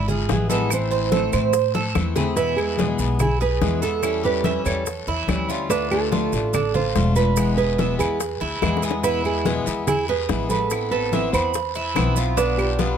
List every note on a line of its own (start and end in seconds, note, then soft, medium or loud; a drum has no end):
0.00 0.25 G#1 medium
0.08 0.30 F4 medium
0.08 0.49 G#4 medium
0.08 high bongo soft
0.08 high conga soft
0.08 low conga medium
0.08 maracas soft
0.29 1.27 A1 medium
0.29 0.49 E3 medium
0.29 0.49 G#3 medium
0.29 0.50 B3 medium
0.29 0.49 E4 medium
0.29 0.50 G#4 medium
0.29 high bongo medium
0.29 low bongo medium
0.29 high conga medium
0.29 short guiro medium
0.29 maracas soft
0.50 0.70 E3 medium
0.50 0.70 G#3 medium
0.50 0.70 B3 medium
0.50 0.70 E4 medium
0.50 0.90 A4 medium
0.50 0.71 B4 medium
0.50 high conga medium
0.50 short guiro medium
0.50 maracas medium
0.70 1.11 E3 medium
0.70 1.12 A3 medium
0.70 1.12 C4 medium
0.70 1.12 E4 medium
0.70 1.93 C5 medium
0.70 high bongo medium
0.70 high conga soft
0.70 long guiro medium
0.70 claves medium
0.70 maracas medium
0.91 1.11 C5 medium
0.91 high conga soft
0.91 maracas soft
1.12 1.53 E3 medium
1.12 1.53 A3 medium
1.12 1.53 C4 medium
1.12 1.54 E4 medium
1.12 1.32 A4 medium
1.12 high bongo medium
1.12 high conga loud
1.12 short guiro medium
1.12 maracas soft
1.33 1.92 A2 medium
1.33 1.73 C5 medium
1.33 high bongo soft
1.33 short guiro medium
1.33 claves medium
1.33 maracas medium
1.53 muted steel-string acoustic guitar stroke medium
1.53 high bongo medium
1.53 high conga soft
1.53 long guiro medium
1.53 maracas medium
1.75 2.15 A4 medium
1.75 high bongo soft
1.75 high conga medium
1.75 maracas soft
1.95 2.94 E2 medium
1.95 2.15 E3 medium
1.95 2.16 A3 medium
1.95 2.15 C4 medium
1.95 2.14 E4 medium
1.95 high bongo medium
1.95 low bongo medium
1.95 high conga medium
1.95 short guiro medium
1.95 claves medium
1.95 maracas soft
2.16 2.37 A3 medium
2.16 2.37 C4 medium
2.16 2.36 E4 medium
2.16 2.36 G#4 medium
2.16 high bongo medium
2.16 low conga loud
2.16 short guiro medium
2.16 maracas medium
2.36 2.57 B2 medium
2.36 2.57 E3 medium
2.36 2.57 G#3 medium
2.36 2.56 B3 medium
2.36 2.77 E4 medium
2.36 2.56 E4 medium
2.36 2.58 B4 loud
2.36 high bongo medium
2.36 high conga soft
2.36 long guiro medium
2.36 maracas medium
2.56 2.77 G#3 soft
2.56 2.77 B3 soft
2.56 2.77 E4 medium
2.56 3.20 G#4 medium
2.56 high bongo soft
2.56 high conga soft
2.56 claves medium
2.56 maracas soft
2.77 2.98 B2 medium
2.77 2.98 E3 medium
2.77 2.99 G#3 medium
2.77 2.99 B3 medium
2.77 2.98 E4 medium
2.77 3.19 G#4 medium
2.77 high bongo medium
2.77 high conga loud
2.77 short guiro medium
2.77 maracas soft
2.99 3.58 B1 medium
2.99 3.20 G#3 soft
2.99 3.20 B3 soft
2.99 3.20 E4 medium
2.99 high bongo soft
2.99 short guiro medium
2.99 maracas medium
3.19 3.40 E4 medium
3.19 3.40 G#4 medium
3.19 muted steel-string acoustic guitar stroke soft
3.19 high bongo medium
3.19 high conga soft
3.19 low conga medium
3.19 long guiro medium
3.19 claves medium
3.19 maracas medium
3.41 3.81 G#4 medium
3.41 3.83 B4 medium
3.41 high bongo soft
3.41 high conga soft
3.41 maracas soft
3.61 4.60 E2 medium
3.61 3.82 B2 medium
3.61 3.82 E3 medium
3.61 3.82 G#3 medium
3.61 3.81 B3 medium
3.61 3.80 E4 medium
3.61 high bongo medium
3.61 low bongo medium
3.61 high conga medium
3.61 short guiro medium
3.61 maracas soft
3.81 4.02 G#3 soft
3.81 4.03 B3 soft
3.81 4.02 E4 soft
3.81 4.23 A4 medium
3.81 4.24 A4 medium
3.81 short guiro medium
3.81 maracas medium
4.02 4.23 E3 medium
4.02 4.23 G3 medium
4.02 4.23 C#4 medium
4.02 4.23 E4 medium
4.02 high bongo medium
4.02 high conga soft
4.02 long guiro medium
4.02 claves medium
4.02 maracas medium
4.24 4.43 G3 soft
4.24 4.44 C#4 soft
4.24 4.44 E4 medium
4.24 4.44 G4 medium
4.24 4.65 B4 loud
4.24 high conga soft
4.24 maracas soft
4.43 4.64 E3 medium
4.43 4.64 G3 medium
4.43 4.64 C#4 medium
4.43 4.63 E4 medium
4.43 4.65 E5 medium
4.43 high bongo soft
4.43 high conga loud
4.43 short guiro medium
4.43 maracas soft
4.64 5.05 E2 medium
4.64 4.84 G3 soft
4.64 4.84 C#4 soft
4.64 4.84 E4 medium
4.64 5.07 A4 medium
4.64 5.45 C#5 medium
4.64 high bongo soft
4.64 short guiro medium
4.64 claves medium
4.64 maracas medium
4.85 muted steel-string acoustic guitar stroke medium
4.85 high bongo medium
4.85 high conga soft
4.85 long guiro medium
4.85 maracas medium
5.07 5.27 E2 medium
5.07 5.48 E4 medium
5.07 high bongo soft
5.07 high conga soft
5.07 maracas soft
5.27 6.26 D2 medium
5.27 5.48 E3 medium
5.27 5.48 G3 medium
5.27 5.48 C#4 medium
5.27 5.47 E4 medium
5.27 high bongo medium
5.27 low bongo medium
5.27 high conga medium
5.27 short guiro medium
5.27 claves medium
5.27 maracas soft
5.48 5.69 G3 soft
5.48 5.70 C#4 soft
5.48 5.69 E4 medium
5.48 5.70 F4 medium
5.48 high bongo soft
5.48 high conga soft
5.48 short guiro medium
5.48 maracas medium
5.69 5.90 D3 medium
5.69 5.90 A3 medium
5.69 6.11 D4 medium
5.69 5.90 D4 medium
5.69 5.90 F4 medium
5.69 5.91 B4 loud
5.69 high bongo medium
5.69 high conga soft
5.69 long guiro medium
5.69 maracas medium
5.91 6.11 A3 soft
5.91 6.12 D4 soft
5.91 6.11 F4 soft
5.91 6.54 A4 medium
5.91 high bongo soft
5.91 high conga soft
5.91 claves medium
5.91 maracas soft
6.12 6.32 D3 medium
6.12 6.32 A3 medium
6.12 6.33 D4 medium
6.12 6.52 F4 medium
6.12 6.32 F4 medium
6.12 high bongo medium
6.12 high conga loud
6.12 short guiro medium
6.12 maracas soft
6.33 6.91 A1 medium
6.33 6.53 A3 soft
6.33 6.53 D4 soft
6.33 6.53 F4 soft
6.33 high bongo soft
6.33 short guiro medium
6.33 maracas medium
6.53 6.74 D4 medium
6.53 6.75 A4 medium
6.53 muted steel-string acoustic guitar stroke medium
6.53 high bongo medium
6.53 high conga soft
6.53 low conga medium
6.53 long guiro medium
6.53 claves medium
6.53 maracas medium
6.74 7.15 F4 medium
6.74 7.16 C5 medium
6.74 high bongo soft
6.74 high conga soft
6.74 low conga medium
6.74 maracas soft
6.95 7.94 E1 loud
6.95 7.16 D3 medium
6.95 7.16 A3 medium
6.95 7.16 D4 medium
6.95 7.15 F4 medium
6.95 high bongo medium
6.95 low bongo medium
6.95 high conga medium
6.95 short guiro medium
6.95 maracas soft
7.16 7.37 A3 soft
7.16 7.37 D4 soft
7.16 7.37 F4 medium
7.16 7.55 B4 medium
7.16 7.57 B4 medium
7.16 short guiro medium
7.16 maracas medium
7.36 7.57 B2 medium
7.36 7.57 E3 medium
7.36 7.58 G#3 medium
7.36 7.57 B3 medium
7.36 7.55 E4 medium
7.36 high bongo medium
7.36 high conga soft
7.36 long guiro medium
7.36 claves medium
7.36 maracas medium
7.57 7.78 G#3 soft
7.57 7.78 B3 soft
7.57 7.77 E4 medium
7.57 7.78 G#4 medium
7.57 7.98 B4 loud
7.57 high conga soft
7.57 maracas soft
7.78 7.99 B2 medium
7.78 7.99 E3 medium
7.78 7.99 G#3 medium
7.78 7.99 B3 medium
7.78 7.98 E4 medium
7.78 7.99 E5 medium
7.78 high bongo medium
7.78 high conga loud
7.78 short guiro medium
7.78 maracas soft
7.99 8.38 E2 medium
7.99 8.19 G#3 soft
7.99 8.19 B3 soft
7.99 8.19 E4 medium
7.99 8.79 G#4 medium
7.99 8.40 B4 medium
7.99 short guiro medium
7.99 claves medium
7.99 maracas medium
8.19 muted steel-string acoustic guitar stroke soft
8.19 high bongo medium
8.19 high conga soft
8.19 long guiro medium
8.19 maracas medium
8.41 8.61 D2 medium
8.41 8.82 E4 medium
8.41 high bongo soft
8.41 high conga soft
8.41 maracas soft
8.62 9.60 E2 medium
8.62 8.82 B2 medium
8.62 8.82 E3 medium
8.62 8.83 G#3 medium
8.62 8.82 B3 medium
8.62 8.81 E4 medium
8.62 high bongo medium
8.62 high conga medium
8.62 short guiro medium
8.62 claves medium
8.62 maracas soft
8.77 high bongo medium
8.82 9.03 G#3 soft
8.82 9.03 B3 soft
8.82 9.03 E4 medium
8.82 9.03 G#4 medium
8.82 high conga soft
8.82 short guiro medium
8.82 maracas medium
8.91 low bongo medium
9.03 9.24 B2 medium
9.03 9.24 E3 medium
9.03 9.24 G#3 medium
9.03 9.24 B3 medium
9.03 9.44 E4 medium
9.03 9.23 E4 medium
9.03 9.25 B4 loud
9.03 high bongo medium
9.03 high conga soft
9.03 long guiro medium
9.03 maracas medium
9.24 9.44 G#3 soft
9.24 9.45 B3 soft
9.24 9.45 E4 soft
9.24 9.86 G#4 medium
9.24 high bongo soft
9.24 high conga soft
9.24 claves medium
9.24 maracas soft
9.45 9.65 B2 medium
9.45 9.66 E3 medium
9.45 9.66 G#3 medium
9.45 9.66 B3 medium
9.45 9.66 E4 medium
9.45 9.86 G#4 medium
9.45 high bongo medium
9.45 high conga medium
9.45 short guiro medium
9.45 maracas soft
9.66 10.25 E2 medium
9.66 9.87 G#3 soft
9.66 9.87 B3 medium
9.66 9.87 E4 medium
9.66 high bongo soft
9.66 short guiro medium
9.66 maracas medium
9.87 10.08 E4 medium
9.87 10.09 G#4 medium
9.87 muted steel-string acoustic guitar stroke soft
9.87 high bongo medium
9.87 high conga soft
9.87 low conga medium
9.87 long guiro medium
9.87 claves medium
9.87 maracas medium
10.08 10.49 G#4 medium
10.08 10.48 B4 medium
10.08 high bongo soft
10.08 high conga soft
10.08 maracas soft
10.29 11.28 A1 medium
10.29 10.50 B2 medium
10.29 10.50 E3 medium
10.29 10.50 G#3 medium
10.29 10.49 B3 medium
10.29 10.48 E4 medium
10.29 high bongo medium
10.29 low bongo medium
10.29 high conga medium
10.29 short guiro medium
10.29 maracas soft
10.49 10.71 G#3 soft
10.49 10.70 B3 soft
10.49 10.70 E4 medium
10.49 10.91 A4 medium
10.49 10.91 B4 medium
10.49 high conga medium
10.49 short guiro medium
10.49 maracas medium
10.70 10.91 E3 medium
10.70 10.91 B3 medium
10.70 10.91 C4 medium
10.70 10.90 E4 medium
10.70 high bongo medium
10.70 high conga soft
10.70 long guiro medium
10.70 claves medium
10.70 maracas medium
10.91 11.12 B3 soft
10.91 11.11 C4 soft
10.91 11.11 E4 soft
10.91 11.12 A4 medium
10.91 11.33 B4 medium
10.91 high conga soft
10.91 maracas soft
11.12 11.32 E3 medium
11.12 11.32 B3 medium
11.12 11.32 C4 medium
11.12 11.31 E4 medium
11.12 11.33 E5 medium
11.12 high bongo medium
11.12 high conga loud
11.12 short guiro medium
11.12 maracas soft
11.32 11.92 E2 medium
11.32 11.53 B3 medium
11.32 11.52 C4 soft
11.32 11.53 E4 medium
11.32 12.13 C5 medium
11.32 11.74 B5 medium
11.32 high bongo soft
11.32 short guiro medium
11.32 claves medium
11.32 maracas medium
11.53 muted steel-string acoustic guitar stroke medium
11.53 high bongo medium
11.53 high conga soft
11.53 long guiro medium
11.53 maracas medium
11.75 12.16 E4 loud
11.75 high bongo soft
11.75 high conga soft
11.75 maracas soft
11.95 12.95 B1 medium
11.95 12.16 E3 medium
11.95 12.16 B3 medium
11.95 12.16 C4 medium
11.95 12.15 E4 medium
11.95 high bongo medium
11.95 low bongo medium
11.95 high conga medium
11.95 short guiro medium
11.95 claves medium
11.95 maracas soft
12.16 12.37 B3 soft
12.16 12.37 C4 soft
12.16 12.37 E4 medium
12.16 12.37 F4 medium
12.16 high bongo soft
12.16 high conga soft
12.16 short guiro medium
12.16 maracas medium
12.37 12.57 B2 medium
12.37 12.57 D3 medium
12.37 12.58 B3 medium
12.37 12.78 D4 medium
12.37 12.58 D4 medium
12.37 12.57 F4 medium
12.37 12.59 B4 loud
12.37 high bongo medium
12.37 high conga soft
12.37 long guiro medium
12.37 maracas medium
12.58 12.79 B3 soft
12.58 12.79 D4 soft
12.58 12.78 F4 soft
12.58 12.97 G4 medium
12.58 high bongo soft
12.58 high conga soft
12.58 claves medium
12.58 maracas soft
12.79 12.97 B2 medium
12.79 12.97 D3 medium
12.79 12.97 B3 medium
12.79 12.97 D4 medium
12.79 12.97 F4 medium
12.79 high bongo medium
12.79 high conga medium
12.79 short guiro medium
12.79 maracas soft